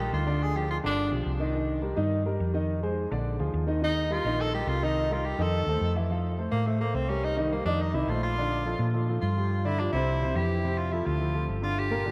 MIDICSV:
0, 0, Header, 1, 4, 480
1, 0, Start_track
1, 0, Tempo, 284225
1, 697, Time_signature, 4, 2, 24, 8
1, 20460, End_track
2, 0, Start_track
2, 0, Title_t, "Grand piano"
2, 0, Program_c, 0, 0
2, 0, Note_on_c, 0, 55, 68
2, 0, Note_on_c, 0, 67, 76
2, 0, Note_on_c, 0, 70, 65
2, 361, Note_off_c, 0, 55, 0
2, 368, Note_off_c, 0, 67, 0
2, 372, Note_off_c, 0, 70, 0
2, 444, Note_on_c, 0, 50, 74
2, 452, Note_on_c, 0, 74, 85
2, 454, Note_on_c, 0, 62, 78
2, 843, Note_off_c, 0, 50, 0
2, 848, Note_off_c, 0, 74, 0
2, 849, Note_off_c, 0, 62, 0
2, 945, Note_on_c, 0, 68, 69
2, 947, Note_on_c, 0, 53, 79
2, 953, Note_on_c, 0, 65, 75
2, 1335, Note_off_c, 0, 68, 0
2, 1337, Note_off_c, 0, 53, 0
2, 1340, Note_off_c, 0, 65, 0
2, 1412, Note_on_c, 0, 50, 84
2, 1416, Note_on_c, 0, 62, 84
2, 1426, Note_on_c, 0, 74, 81
2, 1808, Note_off_c, 0, 50, 0
2, 1810, Note_off_c, 0, 62, 0
2, 1816, Note_off_c, 0, 74, 0
2, 1879, Note_on_c, 0, 53, 67
2, 1884, Note_on_c, 0, 65, 62
2, 1884, Note_on_c, 0, 67, 66
2, 2280, Note_off_c, 0, 53, 0
2, 2283, Note_off_c, 0, 65, 0
2, 2283, Note_off_c, 0, 67, 0
2, 2357, Note_on_c, 0, 51, 79
2, 2364, Note_on_c, 0, 75, 75
2, 2367, Note_on_c, 0, 63, 76
2, 2562, Note_off_c, 0, 51, 0
2, 2566, Note_off_c, 0, 75, 0
2, 2568, Note_off_c, 0, 63, 0
2, 2607, Note_on_c, 0, 51, 71
2, 2611, Note_on_c, 0, 63, 66
2, 2617, Note_on_c, 0, 75, 63
2, 3005, Note_off_c, 0, 51, 0
2, 3007, Note_off_c, 0, 63, 0
2, 3011, Note_off_c, 0, 75, 0
2, 3072, Note_on_c, 0, 55, 64
2, 3075, Note_on_c, 0, 67, 66
2, 3083, Note_on_c, 0, 70, 64
2, 3279, Note_off_c, 0, 55, 0
2, 3281, Note_off_c, 0, 67, 0
2, 3286, Note_off_c, 0, 70, 0
2, 3318, Note_on_c, 0, 51, 80
2, 3320, Note_on_c, 0, 63, 91
2, 3325, Note_on_c, 0, 75, 77
2, 3719, Note_off_c, 0, 51, 0
2, 3721, Note_off_c, 0, 63, 0
2, 3724, Note_off_c, 0, 75, 0
2, 3816, Note_on_c, 0, 70, 73
2, 3817, Note_on_c, 0, 55, 62
2, 3819, Note_on_c, 0, 67, 67
2, 4210, Note_off_c, 0, 70, 0
2, 4211, Note_off_c, 0, 55, 0
2, 4212, Note_off_c, 0, 67, 0
2, 4287, Note_on_c, 0, 51, 86
2, 4288, Note_on_c, 0, 63, 78
2, 4300, Note_on_c, 0, 75, 76
2, 4685, Note_off_c, 0, 51, 0
2, 4686, Note_off_c, 0, 63, 0
2, 4692, Note_off_c, 0, 75, 0
2, 4775, Note_on_c, 0, 56, 75
2, 4778, Note_on_c, 0, 68, 74
2, 4784, Note_on_c, 0, 72, 78
2, 5169, Note_off_c, 0, 56, 0
2, 5171, Note_off_c, 0, 68, 0
2, 5175, Note_off_c, 0, 72, 0
2, 5250, Note_on_c, 0, 50, 84
2, 5262, Note_on_c, 0, 62, 82
2, 5265, Note_on_c, 0, 74, 80
2, 5647, Note_off_c, 0, 50, 0
2, 5654, Note_off_c, 0, 62, 0
2, 5656, Note_off_c, 0, 74, 0
2, 5728, Note_on_c, 0, 53, 74
2, 5729, Note_on_c, 0, 65, 76
2, 5740, Note_on_c, 0, 68, 67
2, 6126, Note_off_c, 0, 53, 0
2, 6126, Note_off_c, 0, 65, 0
2, 6132, Note_off_c, 0, 68, 0
2, 6194, Note_on_c, 0, 51, 81
2, 6208, Note_on_c, 0, 63, 79
2, 6215, Note_on_c, 0, 75, 75
2, 6400, Note_off_c, 0, 51, 0
2, 6409, Note_off_c, 0, 63, 0
2, 6413, Note_off_c, 0, 75, 0
2, 6453, Note_on_c, 0, 51, 71
2, 6453, Note_on_c, 0, 75, 69
2, 6455, Note_on_c, 0, 63, 71
2, 6848, Note_off_c, 0, 51, 0
2, 6848, Note_off_c, 0, 75, 0
2, 6850, Note_off_c, 0, 63, 0
2, 6920, Note_on_c, 0, 55, 73
2, 6929, Note_on_c, 0, 70, 61
2, 6935, Note_on_c, 0, 67, 65
2, 7124, Note_off_c, 0, 55, 0
2, 7129, Note_off_c, 0, 70, 0
2, 7133, Note_off_c, 0, 67, 0
2, 7188, Note_on_c, 0, 63, 86
2, 7189, Note_on_c, 0, 51, 77
2, 7193, Note_on_c, 0, 75, 77
2, 7577, Note_off_c, 0, 51, 0
2, 7577, Note_off_c, 0, 63, 0
2, 7580, Note_off_c, 0, 75, 0
2, 7660, Note_on_c, 0, 55, 67
2, 7668, Note_on_c, 0, 67, 76
2, 7672, Note_on_c, 0, 70, 71
2, 8052, Note_off_c, 0, 55, 0
2, 8057, Note_off_c, 0, 67, 0
2, 8059, Note_off_c, 0, 70, 0
2, 8147, Note_on_c, 0, 51, 88
2, 8148, Note_on_c, 0, 63, 78
2, 8162, Note_on_c, 0, 75, 90
2, 8536, Note_off_c, 0, 51, 0
2, 8537, Note_off_c, 0, 63, 0
2, 8546, Note_off_c, 0, 75, 0
2, 8626, Note_on_c, 0, 55, 70
2, 8626, Note_on_c, 0, 67, 73
2, 8642, Note_on_c, 0, 70, 75
2, 9016, Note_off_c, 0, 55, 0
2, 9016, Note_off_c, 0, 67, 0
2, 9025, Note_off_c, 0, 70, 0
2, 9101, Note_on_c, 0, 51, 83
2, 9107, Note_on_c, 0, 63, 85
2, 9107, Note_on_c, 0, 75, 82
2, 9493, Note_off_c, 0, 51, 0
2, 9497, Note_off_c, 0, 63, 0
2, 9497, Note_off_c, 0, 75, 0
2, 9596, Note_on_c, 0, 57, 69
2, 9603, Note_on_c, 0, 69, 74
2, 9606, Note_on_c, 0, 72, 66
2, 9982, Note_off_c, 0, 57, 0
2, 9986, Note_off_c, 0, 69, 0
2, 9988, Note_off_c, 0, 72, 0
2, 10062, Note_on_c, 0, 52, 72
2, 10068, Note_on_c, 0, 64, 85
2, 10077, Note_on_c, 0, 76, 78
2, 10257, Note_off_c, 0, 52, 0
2, 10260, Note_off_c, 0, 64, 0
2, 10266, Note_off_c, 0, 76, 0
2, 10299, Note_on_c, 0, 53, 63
2, 10304, Note_on_c, 0, 65, 68
2, 10317, Note_on_c, 0, 77, 72
2, 10692, Note_off_c, 0, 53, 0
2, 10695, Note_off_c, 0, 65, 0
2, 10702, Note_off_c, 0, 77, 0
2, 10774, Note_on_c, 0, 57, 62
2, 10783, Note_on_c, 0, 69, 71
2, 10787, Note_on_c, 0, 72, 69
2, 11169, Note_off_c, 0, 57, 0
2, 11174, Note_off_c, 0, 69, 0
2, 11176, Note_off_c, 0, 72, 0
2, 11244, Note_on_c, 0, 57, 60
2, 11251, Note_on_c, 0, 69, 69
2, 11253, Note_on_c, 0, 72, 62
2, 11446, Note_off_c, 0, 57, 0
2, 11450, Note_off_c, 0, 69, 0
2, 11451, Note_off_c, 0, 72, 0
2, 11488, Note_on_c, 0, 57, 67
2, 11490, Note_on_c, 0, 69, 69
2, 11494, Note_on_c, 0, 72, 71
2, 11885, Note_off_c, 0, 57, 0
2, 11887, Note_off_c, 0, 69, 0
2, 11889, Note_off_c, 0, 72, 0
2, 11976, Note_on_c, 0, 67, 68
2, 11979, Note_on_c, 0, 55, 73
2, 11992, Note_on_c, 0, 70, 67
2, 12370, Note_off_c, 0, 67, 0
2, 12372, Note_off_c, 0, 55, 0
2, 12380, Note_off_c, 0, 70, 0
2, 12438, Note_on_c, 0, 51, 93
2, 12452, Note_on_c, 0, 75, 88
2, 12453, Note_on_c, 0, 63, 88
2, 12643, Note_off_c, 0, 51, 0
2, 12651, Note_off_c, 0, 63, 0
2, 12651, Note_off_c, 0, 75, 0
2, 12701, Note_on_c, 0, 55, 73
2, 12705, Note_on_c, 0, 67, 61
2, 12712, Note_on_c, 0, 70, 63
2, 12896, Note_off_c, 0, 55, 0
2, 12899, Note_off_c, 0, 67, 0
2, 12903, Note_off_c, 0, 70, 0
2, 12944, Note_on_c, 0, 63, 88
2, 12950, Note_on_c, 0, 51, 81
2, 12952, Note_on_c, 0, 75, 82
2, 13335, Note_off_c, 0, 63, 0
2, 13338, Note_off_c, 0, 51, 0
2, 13339, Note_off_c, 0, 75, 0
2, 13417, Note_on_c, 0, 51, 73
2, 13423, Note_on_c, 0, 75, 80
2, 13425, Note_on_c, 0, 63, 78
2, 13614, Note_off_c, 0, 51, 0
2, 13618, Note_off_c, 0, 63, 0
2, 13618, Note_off_c, 0, 75, 0
2, 13659, Note_on_c, 0, 57, 70
2, 13672, Note_on_c, 0, 69, 69
2, 13677, Note_on_c, 0, 72, 65
2, 14052, Note_off_c, 0, 57, 0
2, 14059, Note_off_c, 0, 69, 0
2, 14062, Note_off_c, 0, 72, 0
2, 14150, Note_on_c, 0, 50, 64
2, 14158, Note_on_c, 0, 62, 76
2, 14158, Note_on_c, 0, 74, 80
2, 14538, Note_off_c, 0, 50, 0
2, 14543, Note_off_c, 0, 62, 0
2, 14543, Note_off_c, 0, 74, 0
2, 14616, Note_on_c, 0, 65, 73
2, 14619, Note_on_c, 0, 53, 73
2, 14619, Note_on_c, 0, 69, 66
2, 15010, Note_off_c, 0, 65, 0
2, 15011, Note_off_c, 0, 69, 0
2, 15012, Note_off_c, 0, 53, 0
2, 15091, Note_on_c, 0, 53, 60
2, 15093, Note_on_c, 0, 65, 62
2, 15101, Note_on_c, 0, 69, 70
2, 15290, Note_off_c, 0, 53, 0
2, 15291, Note_off_c, 0, 65, 0
2, 15296, Note_off_c, 0, 69, 0
2, 15352, Note_on_c, 0, 53, 69
2, 15354, Note_on_c, 0, 65, 70
2, 15366, Note_on_c, 0, 69, 67
2, 15739, Note_off_c, 0, 53, 0
2, 15740, Note_off_c, 0, 65, 0
2, 15747, Note_off_c, 0, 69, 0
2, 15811, Note_on_c, 0, 53, 66
2, 15822, Note_on_c, 0, 65, 62
2, 15837, Note_on_c, 0, 67, 72
2, 16207, Note_off_c, 0, 53, 0
2, 16213, Note_off_c, 0, 65, 0
2, 16222, Note_off_c, 0, 67, 0
2, 16293, Note_on_c, 0, 50, 81
2, 16300, Note_on_c, 0, 62, 86
2, 16301, Note_on_c, 0, 74, 94
2, 16491, Note_off_c, 0, 50, 0
2, 16495, Note_off_c, 0, 62, 0
2, 16496, Note_off_c, 0, 74, 0
2, 16544, Note_on_c, 0, 53, 62
2, 16546, Note_on_c, 0, 65, 66
2, 16554, Note_on_c, 0, 67, 66
2, 16737, Note_off_c, 0, 53, 0
2, 16739, Note_off_c, 0, 65, 0
2, 16743, Note_off_c, 0, 67, 0
2, 16790, Note_on_c, 0, 48, 84
2, 16803, Note_on_c, 0, 72, 90
2, 16804, Note_on_c, 0, 60, 90
2, 17178, Note_off_c, 0, 48, 0
2, 17185, Note_off_c, 0, 72, 0
2, 17186, Note_off_c, 0, 60, 0
2, 17257, Note_on_c, 0, 60, 80
2, 17259, Note_on_c, 0, 48, 79
2, 17268, Note_on_c, 0, 72, 86
2, 17453, Note_off_c, 0, 60, 0
2, 17454, Note_off_c, 0, 48, 0
2, 17459, Note_off_c, 0, 72, 0
2, 17503, Note_on_c, 0, 52, 68
2, 17507, Note_on_c, 0, 64, 62
2, 17514, Note_on_c, 0, 67, 73
2, 17893, Note_off_c, 0, 52, 0
2, 17895, Note_off_c, 0, 64, 0
2, 17900, Note_off_c, 0, 67, 0
2, 17974, Note_on_c, 0, 48, 66
2, 17974, Note_on_c, 0, 60, 77
2, 17984, Note_on_c, 0, 72, 72
2, 18368, Note_off_c, 0, 48, 0
2, 18368, Note_off_c, 0, 60, 0
2, 18374, Note_off_c, 0, 72, 0
2, 18444, Note_on_c, 0, 53, 66
2, 18451, Note_on_c, 0, 65, 70
2, 18458, Note_on_c, 0, 69, 65
2, 18842, Note_off_c, 0, 53, 0
2, 18846, Note_off_c, 0, 65, 0
2, 18850, Note_off_c, 0, 69, 0
2, 18928, Note_on_c, 0, 53, 67
2, 18928, Note_on_c, 0, 69, 61
2, 18932, Note_on_c, 0, 65, 63
2, 19127, Note_off_c, 0, 53, 0
2, 19127, Note_off_c, 0, 69, 0
2, 19129, Note_off_c, 0, 65, 0
2, 19154, Note_on_c, 0, 65, 72
2, 19163, Note_on_c, 0, 53, 68
2, 19164, Note_on_c, 0, 69, 68
2, 19555, Note_off_c, 0, 65, 0
2, 19561, Note_off_c, 0, 53, 0
2, 19561, Note_off_c, 0, 69, 0
2, 19621, Note_on_c, 0, 50, 75
2, 19631, Note_on_c, 0, 62, 67
2, 19643, Note_on_c, 0, 65, 73
2, 20028, Note_off_c, 0, 50, 0
2, 20034, Note_off_c, 0, 62, 0
2, 20041, Note_off_c, 0, 65, 0
2, 20109, Note_on_c, 0, 46, 90
2, 20113, Note_on_c, 0, 58, 88
2, 20116, Note_on_c, 0, 70, 87
2, 20315, Note_off_c, 0, 46, 0
2, 20318, Note_off_c, 0, 58, 0
2, 20320, Note_off_c, 0, 70, 0
2, 20345, Note_on_c, 0, 50, 69
2, 20358, Note_on_c, 0, 62, 72
2, 20362, Note_on_c, 0, 65, 65
2, 20460, Note_off_c, 0, 50, 0
2, 20460, Note_off_c, 0, 62, 0
2, 20460, Note_off_c, 0, 65, 0
2, 20460, End_track
3, 0, Start_track
3, 0, Title_t, "Tenor saxophone"
3, 0, Program_c, 1, 66
3, 0, Note_on_c, 1, 67, 82
3, 219, Note_off_c, 1, 67, 0
3, 229, Note_on_c, 1, 65, 93
3, 717, Note_on_c, 1, 68, 107
3, 743, Note_off_c, 1, 65, 0
3, 949, Note_on_c, 1, 67, 90
3, 974, Note_off_c, 1, 68, 0
3, 1183, Note_off_c, 1, 67, 0
3, 1191, Note_on_c, 1, 65, 75
3, 1296, Note_off_c, 1, 65, 0
3, 1451, Note_on_c, 1, 62, 86
3, 1882, Note_off_c, 1, 62, 0
3, 6478, Note_on_c, 1, 63, 95
3, 6952, Note_on_c, 1, 65, 98
3, 6977, Note_off_c, 1, 63, 0
3, 7440, Note_on_c, 1, 69, 106
3, 7465, Note_off_c, 1, 65, 0
3, 7662, Note_off_c, 1, 69, 0
3, 7672, Note_on_c, 1, 67, 90
3, 7909, Note_on_c, 1, 65, 100
3, 7934, Note_off_c, 1, 67, 0
3, 8163, Note_on_c, 1, 63, 100
3, 8188, Note_off_c, 1, 65, 0
3, 8653, Note_on_c, 1, 65, 83
3, 8678, Note_off_c, 1, 63, 0
3, 8868, Note_on_c, 1, 67, 90
3, 8893, Note_off_c, 1, 65, 0
3, 9148, Note_on_c, 1, 69, 102
3, 9173, Note_off_c, 1, 67, 0
3, 10082, Note_off_c, 1, 69, 0
3, 11003, Note_on_c, 1, 58, 89
3, 11261, Note_on_c, 1, 57, 74
3, 11286, Note_off_c, 1, 58, 0
3, 11481, Note_off_c, 1, 57, 0
3, 11491, Note_on_c, 1, 58, 84
3, 11732, Note_on_c, 1, 60, 83
3, 11757, Note_off_c, 1, 58, 0
3, 11975, Note_on_c, 1, 61, 87
3, 12000, Note_off_c, 1, 60, 0
3, 12228, Note_on_c, 1, 63, 86
3, 12253, Note_off_c, 1, 61, 0
3, 12463, Note_off_c, 1, 63, 0
3, 12471, Note_on_c, 1, 55, 47
3, 12701, Note_on_c, 1, 58, 64
3, 12726, Note_off_c, 1, 55, 0
3, 12919, Note_off_c, 1, 58, 0
3, 12929, Note_on_c, 1, 62, 83
3, 13200, Note_on_c, 1, 63, 82
3, 13225, Note_off_c, 1, 62, 0
3, 13417, Note_on_c, 1, 64, 80
3, 13442, Note_off_c, 1, 63, 0
3, 13665, Note_on_c, 1, 65, 81
3, 13690, Note_off_c, 1, 64, 0
3, 13888, Note_off_c, 1, 65, 0
3, 13898, Note_on_c, 1, 65, 104
3, 15030, Note_off_c, 1, 65, 0
3, 15557, Note_on_c, 1, 65, 80
3, 16299, Note_on_c, 1, 64, 92
3, 16324, Note_off_c, 1, 65, 0
3, 16535, Note_on_c, 1, 62, 77
3, 16560, Note_off_c, 1, 64, 0
3, 16752, Note_off_c, 1, 62, 0
3, 16762, Note_on_c, 1, 64, 92
3, 17490, Note_on_c, 1, 67, 91
3, 17516, Note_off_c, 1, 64, 0
3, 18201, Note_on_c, 1, 65, 84
3, 18226, Note_off_c, 1, 67, 0
3, 18438, Note_on_c, 1, 64, 79
3, 18463, Note_off_c, 1, 65, 0
3, 18673, Note_on_c, 1, 65, 98
3, 18699, Note_off_c, 1, 64, 0
3, 19404, Note_off_c, 1, 65, 0
3, 19647, Note_on_c, 1, 65, 101
3, 19911, Note_on_c, 1, 67, 111
3, 19936, Note_off_c, 1, 65, 0
3, 20460, Note_off_c, 1, 67, 0
3, 20460, End_track
4, 0, Start_track
4, 0, Title_t, "Fingered electric bass"
4, 0, Program_c, 2, 33
4, 0, Note_on_c, 2, 34, 100
4, 170, Note_off_c, 2, 34, 0
4, 212, Note_on_c, 2, 38, 105
4, 1323, Note_off_c, 2, 38, 0
4, 1420, Note_on_c, 2, 31, 87
4, 1865, Note_off_c, 2, 31, 0
4, 1898, Note_on_c, 2, 35, 76
4, 2121, Note_off_c, 2, 35, 0
4, 2130, Note_on_c, 2, 36, 94
4, 3242, Note_off_c, 2, 36, 0
4, 3329, Note_on_c, 2, 43, 90
4, 4002, Note_off_c, 2, 43, 0
4, 4052, Note_on_c, 2, 41, 97
4, 5163, Note_off_c, 2, 41, 0
4, 5261, Note_on_c, 2, 34, 105
4, 5705, Note_off_c, 2, 34, 0
4, 5733, Note_on_c, 2, 38, 79
4, 5958, Note_off_c, 2, 38, 0
4, 5972, Note_on_c, 2, 39, 97
4, 7083, Note_off_c, 2, 39, 0
4, 7170, Note_on_c, 2, 34, 97
4, 7843, Note_off_c, 2, 34, 0
4, 7889, Note_on_c, 2, 36, 98
4, 9001, Note_off_c, 2, 36, 0
4, 9097, Note_on_c, 2, 41, 97
4, 9543, Note_off_c, 2, 41, 0
4, 9569, Note_on_c, 2, 39, 79
4, 9796, Note_off_c, 2, 39, 0
4, 9816, Note_on_c, 2, 41, 90
4, 10925, Note_off_c, 2, 41, 0
4, 11014, Note_on_c, 2, 45, 85
4, 11685, Note_off_c, 2, 45, 0
4, 11722, Note_on_c, 2, 36, 90
4, 12838, Note_off_c, 2, 36, 0
4, 12921, Note_on_c, 2, 41, 88
4, 13375, Note_off_c, 2, 41, 0
4, 13402, Note_on_c, 2, 36, 78
4, 13626, Note_off_c, 2, 36, 0
4, 13637, Note_on_c, 2, 34, 100
4, 14755, Note_off_c, 2, 34, 0
4, 14845, Note_on_c, 2, 46, 91
4, 15520, Note_off_c, 2, 46, 0
4, 15579, Note_on_c, 2, 43, 98
4, 16686, Note_off_c, 2, 43, 0
4, 16769, Note_on_c, 2, 36, 104
4, 17441, Note_off_c, 2, 36, 0
4, 17485, Note_on_c, 2, 41, 94
4, 18598, Note_off_c, 2, 41, 0
4, 18686, Note_on_c, 2, 38, 97
4, 19359, Note_off_c, 2, 38, 0
4, 19404, Note_on_c, 2, 31, 97
4, 20460, Note_off_c, 2, 31, 0
4, 20460, End_track
0, 0, End_of_file